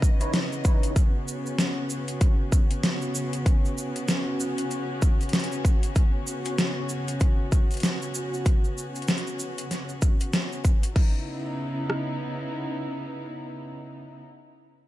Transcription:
Already playing: string section C#3 E3 B3 D#5
0.02 kick, shaker
0.21 tine electric piano D#4 E4 B4 C#5, closed hi-hat, shaker
0.34 snare, closed hi-hat, shaker
0.52 shaker
0.65 tine electric piano D#4 E4 B4 C#5, kick, shaker
0.83 closed hi-hat, shaker
0.96 string section C#4 F#4, kick, closed hi-hat, shaker
1.28 shaker
1.46 shaker
1.59 snare, closed hi-hat, shaker
1.90 shaker
2.08 closed hi-hat, shaker
2.21 kick, closed hi-hat, shaker
2.52 kick, shaker
2.71 closed hi-hat, shaker
2.83 snare, closed hi-hat, shaker
3.02 shaker
3.15 shaker
3.33 closed hi-hat, shaker
3.46 kick, closed hi-hat, shaker
3.65 shaker
3.78 shaker
3.96 closed hi-hat, shaker
4.08 snare, closed hi-hat, shaker
4.40 shaker
4.58 closed hi-hat, shaker
4.71 closed hi-hat, shaker
5.02 kick, shaker
5.21 closed hi-hat, shaker
5.23 closed hi-hat
5.29 closed hi-hat
5.33 snare, closed hi-hat, shaker
5.40 closed hi-hat
5.44 closed hi-hat
5.52 shaker
5.65 kick, shaker
5.83 closed hi-hat, shaker
5.95 kick, closed hi-hat, shaker
6.27 shaker
6.45 closed hi-hat, shaker
6.58 snare, closed hi-hat, shaker
6.89 shaker
7.08 closed hi-hat, shaker
7.20 kick, closed hi-hat, shaker
7.52 kick, shaker
7.71 closed hi-hat, shaker
7.74 closed hi-hat
7.77 closed hi-hat
7.80 snare, closed hi-hat
7.83 closed hi-hat, shaker
8.02 shaker
8.15 shaker
8.34 shaker
8.46 kick, closed hi-hat, shaker
8.64 shaker
8.78 shaker
8.95 closed hi-hat, shaker
9.02 closed hi-hat
9.08 snare, closed hi-hat, shaker
9.18 closed hi-hat
9.27 shaker
9.39 shaker
9.58 closed hi-hat, shaker
9.71 snare, closed hi-hat, shaker
9.89 shaker
10.02 kick, shaker
10.20 closed hi-hat, shaker
10.33 snare, closed hi-hat, shaker
10.52 shaker
10.65 kick, shaker
10.83 closed hi-hat, shaker
10.96 string section C#3 B3 D#4 E4, kick, crash
11.90 cross-stick

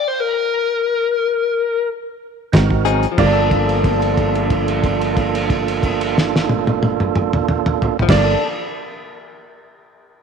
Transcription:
0.08 lead electric guitar C5
0.20 lead electric guitar A#4
2.52 analog synth bass G#1, tonewheel organ C4 D#4 F#4 A#4, kick, snare, closed hi-hat
2.70 kick
2.85 clean electric guitar F#3 C4 D#4 G#4, closed hi-hat
3.03 closed hi-hat
3.12 clean electric guitar F3
3.18 analog synth bass G1, tonewheel organ A#3 D4 F4 A4, clean electric guitar A#3, upright piano D5, kick, crash
3.27 clean electric guitar D4
3.33 clean electric guitar A4
3.51 kick, crash
3.69 crash
3.84 kick, crash
4.02 crash
4.17 kick, crash
4.35 crash
4.50 kick, crash
4.68 crash
4.83 kick, crash
5.01 crash
5.17 kick, crash
5.35 crash
5.50 kick, crash
5.68 crash
5.83 kick, crash
6.01 crash
6.18 snare
6.36 snare
6.49 high tom
6.67 high tom
6.83 high tom
7.00 mid tom
7.16 mid tom
7.33 mid tom
7.48 mid tom
7.66 mid tom
7.82 floor tom
7.99 clean electric guitar F3, floor tom
8.08 analog synth bass G1, tonewheel organ A#3 D4 F4 A4, clean electric guitar A#3, upright piano D5, kick, snare, crash
8.18 clean electric guitar D4
8.24 clean electric guitar A4

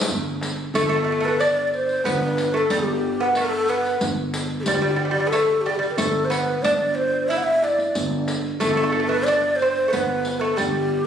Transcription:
0.01 riq
0.08 upright bass G1, riq, tombak dum
0.41 riq, tombak tek
0.74 upright bass G1, lute A3, ney A4, riq, tombak dum
0.83 lute A3
0.89 lute A3
0.97 lute A3
1.04 lute A3
1.12 lute A3
1.20 lute A3
1.25 lute A3, ney B4
1.39 lute D4, ney D5, riq, tombak tek
1.67 ney D5
1.73 ney C5, riq
1.89 riq
2.04 upright bass G1, lute B3, ney B4, riq, tombak dum
2.37 riq, tombak tek
2.54 lute A3, ney A4
2.70 upright bass G1, lute G3, ney G4, riq, tombak dum
3.20 lute B3, ney B4
3.35 lute A3, ney A4, riq, tombak tek
3.68 lute B3, ney B4, riq
3.86 riq
4.01 upright bass G1, riq, tombak dum
4.34 riq, tombak tek
4.60 ney G4 A4
4.66 upright bass G1, lute G3, riq, tombak dum
4.74 lute G3
4.82 lute G3
4.90 lute G3
4.96 lute G3
5.05 lute G3
5.11 lute G3, ney G4
5.20 lute G3
5.27 lute B3, ney A4
5.32 lute A3, riq, tombak tek
5.61 ney G4
5.66 lute G3, riq
5.70 ney A4
5.75 lute G3, ney G4
5.83 riq
5.91 ney B4
5.96 upright bass G1, lute A3, ney A4, riq, tombak dum
6.25 ney C5
6.30 lute B3, ney B4, riq, tombak tek
6.63 upright bass G1, lute D4, ney D5, riq, tombak dum
6.95 ney C5
7.28 lute E4, ney E5, riq, tombak tek
7.37 ney F#5
7.43 ney E5, tombak ka
7.63 ney D5, riq, tombak tek
7.78 riq, tombak ka
7.95 upright bass G1, riq, tombak dum
8.28 riq, tombak tek
8.60 upright bass G1, lute A3, ney A4, riq, tombak dum
8.70 lute A3
8.77 lute A3
8.83 lute A3
8.92 lute A3
9.00 lute A3
9.08 lute A3, ney B4
9.14 lute A3
9.25 lute D4, ney D5, riq, tombak tek
9.56 ney C5, riq
9.62 lute C4
9.75 riq
9.88 lute A3, ney B4
9.92 upright bass G1, lute B3, riq, tombak dum
10.25 riq, tombak tek
10.40 lute A3, ney A4
10.57 upright bass G1, lute G3, ney G4, riq, tombak dum

